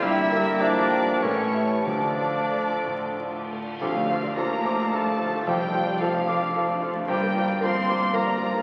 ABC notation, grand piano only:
X:1
M:3/4
L:1/16
Q:1/4=109
K:Dm
V:1 name="Grand piano"
G,,2 B,2 [Ge]2 G,2 A,,2 [Ee]2 | D,,2 A,2 [Fd]2 A,,2 [Fd]2 A,2 | D,, A, F d A f d' f A d F A, | F,, A, F d A f d' f A d F A, |
G,, B, F d B f d' f B d F B, |]